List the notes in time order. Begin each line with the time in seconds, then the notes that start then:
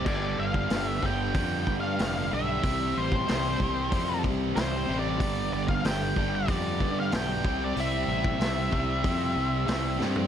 0.05 G1 G2 D3 G3 B3 D4 G4 D5, kick, crash
0.39 G1 F5
0.54 kick
0.70 G1 G2 D3 G3 B3 D4 G4, snare, open hi-hat
0.86 E5
1.01 G1 G2 D3 G3 B3 D4 G4, kick
1.06 G5
1.34 F2 G2 D3 G3 B3 D4 G4, kick, open hi-hat
1.67 G2, kick
1.80 F5
1.98 F1 G2 D3 G3 B3 D4 G4, snare, open hi-hat
2.02 F5
2.29 B1 G2 D3 G3 B3 D4 G4
2.34 E5
2.62 C2 C3 E3 G3 C4 E4 G4, kick, open hi-hat
2.97 A1 C5
3.12 kick
3.26 C2 C3 E3 G3 C4 E4 G4, snare, open hi-hat
3.59 C2 C3 E3 G3 C4 E4 G4, kick
3.90 F2 C3 E3 G3 C4 E4 G4, kick, open hi-hat
4.24 C2, kick
4.54 C2 C3 E3 G3 C4 E4 G4 C5, snare, open hi-hat
4.87 A1 C3 E3 G3 C4 E4 G4
4.99 D5
5.18 G1 G2 D3 G3 B3 D4 G4, kick, open hi-hat
5.53 G1 D5
5.68 F5, kick
5.83 G1 G2 D3 G3 B3 D4 G4 G5, snare, open hi-hat
6.16 G1 G2 D3 G3 B3 D4 G4, kick
6.35 D5
6.48 F2 G2 D3 G3 B3 D4 G4, kick, open hi-hat
6.80 G2, kick
7.00 F5
7.12 B1 G2 D3 G3 B3 D4 G4 G5, snare, open hi-hat
7.44 C2 C3 G3 C4 E4 G4, kick
7.64 D5
7.76 C2 C3 G3 C4 E4 G4, open hi-hat
7.80 E5
8.08 A1
8.24 kick
8.39 C2 C3 G3 C4 E4 G4, snare, open hi-hat
8.71 C2 C3 G3 C4 E4 G4, kick
9.03 F2 C3 G3 C4 E4 G4, kick, open hi-hat
9.36 C2
9.67 C2 C3 G3 C4 E4 G4, snare, open hi-hat
9.99 G2 C3 G3 C4 E4 G4, snare
10.16 floor tom